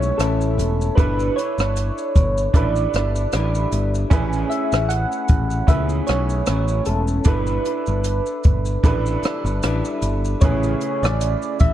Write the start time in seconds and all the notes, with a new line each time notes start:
Already playing: B1 A2 G#3 C#4 E4 B4 C#5 G#5
0.03 shaker
0.17 A1 A2 C#4 A4, cross-stick, closed hi-hat, shaker
0.21 E4
0.41 shaker
0.58 E1, closed hi-hat, shaker
0.81 shaker
0.95 G1 G3 D4 E4 A4 B4, kick, closed hi-hat, shaker
1.00 B4
1.20 shaker
1.36 E4 B4 C#5, closed hi-hat, shaker
1.40 D4
1.58 G1, cross-stick, shaker
1.77 closed hi-hat, shaker
1.98 shaker
2.16 G1, kick, closed hi-hat, shaker
2.37 shaker
2.53 A1 G3 D4 E4 A4 B4 D5, kick, closed hi-hat, shaker
2.76 shaker
2.94 G1, cross-stick, closed hi-hat, shaker
3.16 shaker
3.32 A1 G3 D4 E4 B4, cross-stick, closed hi-hat, shaker
3.55 shaker
3.72 G1, closed hi-hat, shaker
3.95 shaker
4.10 A1 A3 C#4 E4 G#4 B4, kick, closed hi-hat, shaker
4.14 E4 G#4
4.33 shaker
4.50 E5, closed hi-hat, shaker
4.72 A1, cross-stick, shaker
4.89 F#5, closed hi-hat, shaker
5.12 shaker
5.28 A1, kick, closed hi-hat, shaker
5.50 shaker
5.67 C#2 A3 C#4 E4 G#4 B4 E5, kick, closed hi-hat, shaker
5.71 E4 G#4
5.89 shaker
6.07 B1 C#5, cross-stick, closed hi-hat, shaker
6.30 shaker
6.46 A1 A3 C#4 E4, cross-stick, closed hi-hat, shaker
6.68 shaker
6.85 E1 A4, closed hi-hat, shaker
7.08 shaker
7.24 G1 G3 D4 E4 A4 B4, kick, closed hi-hat, shaker
7.47 shaker
7.65 D4 E4 B4, closed hi-hat, shaker
7.86 G1, shaker
8.04 closed hi-hat, shaker
8.26 shaker
8.44 G1, kick, closed hi-hat, shaker
8.65 shaker
8.83 A1 G3 D4 E4 A4 B4, kick, closed hi-hat, shaker
9.06 shaker
9.23 muted picked electric bass stroke, cross-stick, closed hi-hat, shaker
9.45 G1, shaker
9.63 A1 G3 D4 E4 B4, cross-stick, closed hi-hat, shaker
9.85 shaker
10.02 G1, closed hi-hat, shaker
10.25 shaker
10.40 A1 C#3 A3 E4 G#4 C#5, kick, closed hi-hat, shaker
10.44 E4 G#4 B4
10.63 shaker
10.81 closed hi-hat, shaker
11.03 A1 D5, cross-stick, shaker
11.21 closed hi-hat, shaker
11.42 shaker
11.60 A1 E5, kick, closed hi-hat, shaker